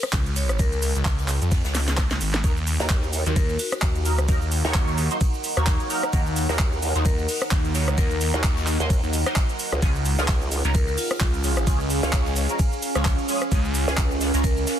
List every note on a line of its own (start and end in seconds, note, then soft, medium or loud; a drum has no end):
0.03 cross-stick medium
0.03 closed hi-hat medium
0.03 shaker soft
0.13 0.58 C#2 loud
0.13 kick loud
0.13 snare loud
0.13 clap loud
0.13 closed hi-hat medium
0.13 ride medium
0.13 shaker soft
0.13 shaker medium
0.26 closed hi-hat soft
0.26 shaker soft
0.36 0.57 C#5 loud
0.36 open hi-hat loud
0.36 shaker medium
0.49 cross-stick medium
0.49 closed hi-hat soft
0.49 shaker soft
0.59 0.93 C#2 medium
0.59 0.68 A#4 medium
0.59 kick loud
0.59 closed hi-hat medium
0.59 ride medium
0.59 shaker soft
0.59 shaker medium
0.72 0.79 A#4 medium
0.72 closed hi-hat soft
0.72 shaker soft
0.82 open hi-hat loud
0.82 shaker medium
0.95 1.04 C#2 loud
0.95 snare soft
0.95 shaker soft
1.05 1.39 C#2 loud
1.05 kick loud
1.05 snare loud
1.05 clap loud
1.05 closed hi-hat medium
1.05 ride medium
1.05 shaker soft
1.05 shaker medium
1.19 closed hi-hat soft
1.19 shaker soft
1.28 clap medium
1.28 open hi-hat loud
1.28 shaker medium
1.42 1.63 F2 loud
1.42 closed hi-hat medium
1.42 shaker soft
1.51 kick loud
1.51 snare loud
1.51 closed hi-hat medium
1.51 ride medium
1.51 shaker medium
1.51 shaker soft
1.64 2.09 C#2 loud
1.64 snare loud
1.64 shaker medium
1.64 shaker soft
1.75 snare loud
1.75 snare medium
1.75 open hi-hat loud
1.75 shaker medium
1.88 snare medium
1.88 snare loud
1.88 closed hi-hat medium
1.88 shaker soft
1.88 shaker medium
1.97 kick loud
1.97 snare medium
1.97 snare loud
1.97 clap loud
1.97 closed hi-hat medium
1.97 ride medium
1.97 shaker medium
1.97 shaker soft
2.10 2.19 C#2 loud
2.10 snare medium
2.10 snare loud
2.10 closed hi-hat soft
2.10 shaker medium
2.10 shaker soft
2.21 2.42 G#1 loud
2.21 open hi-hat loud
2.21 shaker medium
2.34 snare medium
2.34 shaker soft
2.44 2.78 D#2 medium
2.44 2.51 F#3 medium
2.44 2.51 A#3 medium
2.44 2.51 D#4 medium
2.44 9.78 D#4 medium
2.44 6.09 A#4 medium
2.44 2.51 A#4 medium
2.44 9.78 F#5 medium
2.44 kick loud
2.44 closed hi-hat medium
2.44 ride medium
2.44 shaker soft
2.44 shaker medium
2.57 shaker soft
2.67 open hi-hat loud
2.67 shaker medium
2.80 2.88 D#2 loud
2.80 2.86 F#3 medium
2.80 2.86 A#3 medium
2.80 2.86 D#4 medium
2.80 2.86 A#4 medium
2.80 snare medium
2.80 shaker soft
2.90 kick loud
2.90 snare loud
2.90 clap loud
2.90 closed hi-hat medium
2.90 ride medium
2.90 shaker soft
2.90 shaker medium
3.03 shaker soft
3.13 open hi-hat loud
3.13 shaker medium
3.26 3.58 D#2 loud
3.26 3.32 F#3 medium
3.26 3.32 A#3 medium
3.26 3.32 D#4 medium
3.26 3.32 C5 medium
3.26 snare medium
3.26 closed hi-hat medium
3.26 shaker soft
3.36 3.45 A#4 medium
3.36 kick loud
3.36 closed hi-hat medium
3.36 ride medium
3.36 shaker soft
3.36 shaker medium
3.49 3.56 A#4 medium
3.49 shaker soft
3.59 4.24 F#4 medium
3.59 open hi-hat loud
3.59 open hi-hat medium
3.59 shaker medium
3.72 cross-stick medium
3.72 closed hi-hat medium
3.72 shaker soft
3.82 4.27 D#2 loud
3.82 kick loud
3.82 snare loud
3.82 clap loud
3.82 closed hi-hat medium
3.82 ride medium
3.82 shaker soft
3.82 shaker loud
3.95 closed hi-hat soft
3.95 shaker soft
4.05 4.13 F#3 medium
4.05 4.13 A#3 medium
4.05 4.13 D#4 medium
4.05 4.13 A#4 medium
4.05 open hi-hat loud
4.05 shaker medium
4.18 cross-stick medium
4.18 closed hi-hat soft
4.18 shaker soft
4.29 4.63 D#2 loud
4.29 4.40 F#3 medium
4.29 4.40 A#3 medium
4.29 4.40 D#4 medium
4.29 4.40 A#4 loud
4.29 kick loud
4.29 closed hi-hat medium
4.29 ride medium
4.29 shaker soft
4.29 shaker medium
4.42 shaker soft
4.52 open hi-hat loud
4.52 shaker medium
4.65 4.73 D#2 loud
4.65 5.08 F#3 medium
4.65 5.08 A#3 medium
4.65 5.08 D#4 medium
4.65 5.08 C#5 loud
4.65 snare soft
4.65 shaker soft
4.74 5.09 D#2 medium
4.74 kick loud
4.74 snare loud
4.74 clap loud
4.74 closed hi-hat medium
4.74 ride medium
4.74 shaker soft
4.74 shaker medium
4.88 closed hi-hat soft
4.88 shaker soft
4.98 open hi-hat loud
4.98 shaker medium
5.11 5.16 F#3 medium
5.11 5.16 A#3 medium
5.11 5.16 D#4 medium
5.11 5.16 C5 medium
5.11 closed hi-hat medium
5.11 shaker soft
5.21 kick loud
5.21 closed hi-hat medium
5.21 ride medium
5.21 shaker soft
5.21 shaker medium
5.34 shaker soft
5.44 open hi-hat loud
5.44 shaker medium
5.57 5.78 D#2 loud
5.57 5.88 F#3 medium
5.57 5.88 A#3 medium
5.57 5.88 D#4 medium
5.57 5.88 C#5 loud
5.57 cross-stick medium
5.57 snare soft
5.57 closed hi-hat medium
5.57 shaker soft
5.67 kick loud
5.67 snare loud
5.67 clap loud
5.67 closed hi-hat medium
5.67 ride medium
5.67 shaker soft
5.67 shaker loud
5.80 closed hi-hat soft
5.80 shaker soft
5.90 6.01 F#3 loud
5.90 6.02 A#3 medium
5.90 6.01 D#4 medium
5.90 6.01 A#4 loud
5.90 open hi-hat loud
5.90 shaker medium
6.03 cross-stick medium
6.03 closed hi-hat soft
6.03 shaker soft
6.13 6.47 D#2 medium
6.13 6.20 F#3 medium
6.13 6.20 A#3 medium
6.13 6.20 D#4 medium
6.13 9.79 A#4 medium
6.13 6.20 A#4 medium
6.13 kick loud
6.13 closed hi-hat medium
6.13 ride medium
6.13 shaker medium
6.13 shaker soft
6.26 shaker soft
6.36 open hi-hat loud
6.36 shaker medium
6.49 6.58 D#2 loud
6.49 6.55 F#3 medium
6.49 6.55 A#3 medium
6.49 6.55 D#4 medium
6.49 6.55 A#4 loud
6.49 snare medium
6.49 shaker soft
6.59 6.93 D#2 medium
6.59 kick loud
6.59 snare loud
6.59 clap loud
6.59 ride medium
6.59 shaker medium
6.59 shaker soft
6.72 shaker soft
6.82 open hi-hat loud
6.82 shaker medium
6.95 7.27 D#2 loud
6.95 7.01 F#3 medium
6.95 7.01 A#3 medium
6.95 7.01 D#4 medium
6.95 7.01 C5 medium
6.95 snare medium
6.95 closed hi-hat medium
6.95 shaker soft
7.05 7.14 A#4 medium
7.05 kick loud
7.05 closed hi-hat medium
7.05 ride medium
7.05 shaker medium
7.05 shaker soft
7.18 7.25 A#4 medium
7.18 shaker soft
7.28 open hi-hat medium
7.28 open hi-hat loud
7.28 shaker medium
7.42 cross-stick medium
7.42 shaker soft
7.51 7.96 D#2 medium
7.51 kick loud
7.51 snare loud
7.51 clap loud
7.51 closed hi-hat medium
7.51 ride medium
7.51 shaker medium
7.51 shaker soft
7.65 closed hi-hat soft
7.65 shaker soft
7.75 7.82 F#3 medium
7.75 7.82 A#3 medium
7.75 7.82 D#4 medium
7.75 7.82 A#4 medium
7.75 7.95 C#5 loud
7.75 open hi-hat loud
7.75 shaker medium
7.88 cross-stick medium
7.88 shaker soft
7.98 8.32 D#2 medium
7.98 8.09 F#3 medium
7.98 8.09 A#3 medium
7.98 8.09 D#4 medium
7.98 8.06 A#4 medium
7.98 8.09 A#4 medium
7.98 kick loud
7.98 closed hi-hat medium
7.98 ride medium
7.98 shaker soft
7.98 shaker medium
8.11 8.17 A#4 medium
8.11 closed hi-hat soft
8.11 shaker soft
8.21 open hi-hat loud
8.21 shaker medium
8.34 8.42 D#2 loud
8.34 8.77 F#3 loud
8.34 8.77 A#3 medium
8.34 8.77 D#4 medium
8.34 8.77 C#5 loud
8.34 snare soft
8.34 shaker soft
8.43 8.78 D#2 loud
8.43 kick loud
8.43 snare loud
8.43 clap loud
8.43 closed hi-hat medium
8.43 ride medium
8.43 shaker medium
8.43 shaker soft
8.57 closed hi-hat soft
8.57 shaker soft
8.67 clap medium
8.67 open hi-hat loud
8.67 shaker medium
8.80 9.01 D#2 loud
8.80 8.86 F#3 medium
8.80 8.86 A#3 medium
8.80 8.86 D#4 medium
8.80 8.86 C5 medium
8.80 closed hi-hat soft
8.80 shaker soft
8.90 kick loud
8.90 closed hi-hat medium
8.90 ride medium
8.90 shaker soft
8.90 shaker medium
9.03 9.24 D#2 loud
9.03 shaker soft
9.13 open hi-hat loud
9.13 shaker medium
9.26 9.80 F#3 medium
9.26 9.80 A#3 medium
9.26 9.80 D#4 medium
9.26 9.80 C5 medium
9.26 cross-stick medium
9.26 snare soft
9.26 closed hi-hat medium
9.26 shaker soft
9.36 kick loud
9.36 snare loud
9.36 clap loud
9.36 closed hi-hat medium
9.36 ride medium
9.36 shaker loud
9.36 shaker soft
9.49 closed hi-hat soft
9.49 shaker soft
9.59 open hi-hat loud
9.59 shaker medium
9.72 9.81 C#2 loud
9.72 cross-stick medium
9.72 closed hi-hat soft
9.72 shaker soft
9.82 10.16 C#2 medium
9.82 9.90 F3 medium
9.82 9.90 G#3 medium
9.82 9.90 C#4 medium
9.82 14.80 C#4 medium
9.82 9.90 G#4 medium
9.82 13.48 G#4 medium
9.82 14.80 F5 medium
9.82 kick loud
9.82 closed hi-hat medium
9.82 ride medium
9.82 shaker soft
9.82 shaker medium
9.96 shaker soft
10.05 open hi-hat loud
10.05 shaker medium
10.18 10.27 C#2 loud
10.18 10.24 F3 medium
10.18 10.24 G#3 medium
10.18 10.24 C#4 medium
10.18 10.24 G#4 loud
10.18 snare medium
10.18 shaker soft
10.28 10.63 C#2 loud
10.28 kick loud
10.28 snare loud
10.28 clap loud
10.28 closed hi-hat medium
10.28 ride medium
10.28 shaker medium
10.28 shaker soft
10.42 shaker soft
10.51 open hi-hat loud
10.51 shaker medium
10.65 10.96 C#2 loud
10.65 10.70 F3 medium
10.65 10.70 G#3 medium
10.65 10.70 C#4 medium
10.65 10.70 A#4 medium
10.65 snare medium
10.65 closed hi-hat soft
10.65 shaker soft
10.75 10.83 A#4 medium
10.75 kick loud
10.75 closed hi-hat medium
10.75 ride medium
10.75 shaker soft
10.75 shaker medium
10.88 10.94 A#4 medium
10.88 shaker soft
10.98 11.63 F4 medium
10.98 open hi-hat loud
10.98 open hi-hat medium
10.98 shaker medium
11.11 cross-stick medium
11.11 closed hi-hat medium
11.11 shaker soft
11.20 11.65 C#2 loud
11.20 kick loud
11.20 snare loud
11.20 clap loud
11.20 closed hi-hat medium
11.20 ride medium
11.20 shaker medium
11.20 shaker soft
11.34 closed hi-hat soft
11.34 shaker soft
11.43 11.51 F3 medium
11.43 11.51 G#3 medium
11.43 11.51 C#4 medium
11.43 11.51 G#4 medium
11.43 open hi-hat loud
11.43 shaker medium
11.57 cross-stick medium
11.57 shaker soft
11.67 12.01 C#2 loud
11.67 11.78 F3 medium
11.67 11.79 G#3 medium
11.67 11.78 C#4 medium
11.67 11.78 G#4 loud
11.67 kick loud
11.67 closed hi-hat medium
11.67 ride medium
11.67 shaker soft
11.67 shaker medium
11.80 shaker soft
11.89 open hi-hat loud
11.89 shaker medium
12.03 12.12 C#2 loud
12.03 12.46 F3 medium
12.03 12.46 G#3 medium
12.03 12.46 C#4 medium
12.03 12.46 C#5 loud
12.03 snare soft
12.03 shaker soft
12.13 12.47 C#2 loud
12.13 kick loud
12.13 snare loud
12.13 clap loud
12.13 closed hi-hat medium
12.13 ride medium
12.13 shaker loud
12.13 shaker soft
12.26 closed hi-hat soft
12.26 shaker soft
12.35 open hi-hat loud
12.35 shaker medium
12.49 12.55 F3 medium
12.49 12.55 G#3 medium
12.49 12.55 C#4 medium
12.49 12.55 A#4 medium
12.49 closed hi-hat medium
12.49 shaker soft
12.59 kick loud
12.59 closed hi-hat medium
12.59 ride medium
12.59 shaker medium
12.59 shaker soft
12.72 shaker soft
12.82 open hi-hat loud
12.82 shaker medium
12.95 13.16 C#2 loud
12.95 13.26 F3 medium
12.95 13.26 G#3 medium
12.95 13.26 C#4 medium
12.95 13.26 C#5 loud
12.95 cross-stick medium
12.95 snare soft
12.95 closed hi-hat medium
12.95 shaker soft
13.05 kick loud
13.05 snare loud
13.05 clap loud
13.05 closed hi-hat medium
13.05 ride medium
13.05 shaker soft
13.05 shaker medium
13.19 closed hi-hat soft
13.19 shaker soft
13.29 13.40 F3 loud
13.29 13.40 G#3 medium
13.29 13.40 C#4 medium
13.29 13.40 G#4 loud
13.29 open hi-hat loud
13.29 shaker medium
13.42 cross-stick medium
13.42 closed hi-hat soft
13.42 shaker soft
13.52 13.86 C#2 loud
13.52 13.59 F3 medium
13.52 13.59 G#3 medium
13.52 13.59 C#4 medium
13.52 13.59 G#4 medium
13.52 14.80 A#4 medium
13.52 kick loud
13.52 closed hi-hat medium
13.52 ride medium
13.52 shaker soft
13.52 shaker medium
13.65 shaker soft
13.74 open hi-hat loud
13.74 shaker medium
13.88 13.96 C#2 loud
13.88 13.93 F3 medium
13.88 13.93 G#3 medium
13.88 13.93 C#4 medium
13.88 13.93 G#4 loud
13.88 snare medium
13.88 shaker soft
13.97 14.32 C#2 loud
13.97 kick loud
13.97 snare loud
13.97 clap loud
13.97 closed hi-hat medium
13.97 ride medium
13.97 shaker soft
13.97 shaker loud
14.11 shaker soft
14.21 snare loud
14.21 open hi-hat loud
14.21 shaker medium
14.34 14.65 C#2 loud
14.34 14.39 F3 medium
14.34 14.39 G#3 medium
14.34 14.39 C#4 medium
14.34 14.39 A#4 medium
14.34 snare loud
14.34 closed hi-hat medium
14.34 shaker soft
14.34 shaker medium
14.44 14.52 A#4 medium
14.44 kick loud
14.44 closed hi-hat medium
14.44 ride medium
14.44 shaker medium
14.44 shaker soft
14.57 14.63 A#4 medium
14.57 shaker soft
14.67 snare loud
14.67 open hi-hat loud
14.67 shaker medium